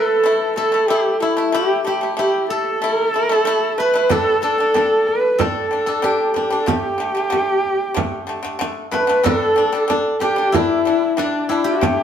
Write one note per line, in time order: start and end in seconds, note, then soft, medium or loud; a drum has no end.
0.00 0.12 A3 medium
0.00 0.13 E4 loud
0.00 0.56 A4 loud
0.00 0.57 A4 medium
0.00 1.90 B4 medium
0.23 0.50 A3 medium
0.23 0.51 E4 medium
0.56 0.69 A3 medium
0.56 0.70 E4 medium
0.56 0.90 A4 loud
0.56 2.50 A4 medium
0.72 0.85 A3 medium
0.72 0.86 E4 medium
0.88 1.14 A3 medium
0.88 1.15 E4 loud
0.88 1.22 G4 medium
0.88 1.54 G4 medium
1.20 1.34 A3 medium
1.20 1.55 E4 medium
1.20 3.83 E4 medium
1.20 1.35 E4 medium
1.37 1.50 A3 medium
1.37 1.51 E4 medium
1.52 1.79 A3 medium
1.52 1.80 E4 loud
1.52 1.85 G4 loud
1.52 1.87 G4 medium
1.85 1.98 A3 medium
1.85 1.99 E4 medium
1.85 2.16 G4 medium
1.85 2.18 G4 medium
2.01 2.14 A3 medium
2.01 2.15 E4 medium
2.17 2.69 A3 medium
2.17 2.70 E4 loud
2.17 2.47 G4 medium
2.17 4.54 G4 medium
2.50 2.94 A4 loud
2.50 4.11 A4 medium
2.82 3.07 A3 medium
2.82 3.09 E4 loud
2.94 3.06 A#4 loud
3.06 3.19 A4 loud
3.14 3.27 A3 medium
3.14 3.28 E4 medium
3.19 3.31 A#4 loud
3.29 3.43 A3 medium
3.29 3.44 E4 loud
3.29 3.79 A4 loud
3.45 3.71 A3 loud
3.45 3.72 E4 loud
3.78 3.91 A3 medium
3.78 3.92 E4 medium
3.78 4.13 B4 loud
3.78 5.84 B4 medium
3.94 4.07 A3 medium
3.94 4.08 E4 medium
4.09 4.36 G3 loud
4.09 4.37 D4 loud
4.09 4.42 A4 medium
4.09 4.43 A4 loud
4.09 frame drum medium
4.42 4.55 G3 medium
4.42 4.56 D4 medium
4.42 5.38 A4 medium
4.42 5.08 A4 loud
4.58 4.71 G3 medium
4.58 4.72 D4 medium
4.74 5.26 G3 medium
4.74 5.27 D4 medium
4.74 frame drum medium
5.07 5.41 B4 medium
5.07 frame drum soft
5.38 5.65 G3 medium
5.38 5.66 D4 medium
5.38 5.86 A4 medium
5.38 6.06 A4 medium
5.38 frame drum medium
5.71 5.84 G3 medium
5.71 5.85 D4 medium
5.86 6.00 G3 medium
5.86 6.01 D4 medium
5.86 8.06 A4 medium
5.86 frame drum soft
6.02 6.29 G3 medium
6.02 6.30 D4 loud
6.02 6.67 G4 medium
6.02 6.61 G4 medium
6.02 frame drum soft
6.34 6.48 G3 medium
6.34 6.49 D4 medium
6.34 frame drum soft
6.50 6.64 G3 medium
6.50 6.65 D4 medium
6.50 frame drum soft
6.61 6.69 A4 medium
6.66 6.93 D3 medium
6.66 6.94 A3 loud
6.66 9.03 G4 medium
6.66 8.61 G4 loud
6.66 frame drum medium
6.98 7.12 D3 medium
6.98 7.13 A3 medium
7.15 7.28 D3 medium
7.15 7.29 A3 medium
7.30 7.83 D3 medium
7.30 7.84 A3 loud
7.30 frame drum medium
7.65 frame drum soft
7.94 8.21 D3 loud
7.94 8.22 A3 loud
7.94 frame drum medium
8.27 8.41 D3 medium
8.27 8.42 A3 medium
8.43 8.57 D3 medium
8.43 8.57 A3 medium
8.43 frame drum soft
8.59 8.86 D3 loud
8.59 8.87 A3 loud
8.59 frame drum medium
8.91 9.05 D3 medium
8.91 9.06 A3 medium
8.91 10.97 B4 medium
8.91 9.26 B4 medium
8.91 frame drum medium
9.07 9.21 D3 medium
9.07 9.22 A3 medium
9.07 frame drum soft
9.23 9.50 G3 medium
9.23 9.51 D4 loud
9.23 9.89 A4 loud
9.23 9.72 A4 medium
9.23 frame drum medium
9.56 9.69 G3 medium
9.56 9.70 D4 medium
9.56 frame drum soft
9.72 9.86 G3 medium
9.72 9.87 D4 medium
9.72 11.92 A4 medium
9.88 10.14 G3 medium
9.88 10.15 D4 loud
9.88 frame drum medium
10.20 10.34 G3 medium
10.20 10.35 D4 medium
10.20 10.56 G4 loud
10.20 11.64 G4 medium
10.20 frame drum medium
10.36 10.50 G3 medium
10.36 10.51 D4 medium
10.52 10.79 G3 medium
10.52 10.80 D4 loud
10.52 11.49 E4 medium
10.52 11.19 E4 loud
10.52 frame drum medium
10.85 11.11 G3 medium
10.85 11.12 D4 medium
10.85 frame drum soft
11.17 11.43 G3 loud
11.17 11.52 D4 medium
11.17 12.03 D4 medium
11.17 11.44 D4 loud
11.17 frame drum medium
11.49 11.75 G3 medium
11.49 11.76 D4 medium
11.49 12.03 E4 medium
11.49 11.67 E4 medium
11.49 frame drum soft
11.64 12.03 G4 medium
11.64 12.03 G4 loud
11.81 12.03 D3 loud
11.81 12.03 A3 loud
11.81 frame drum medium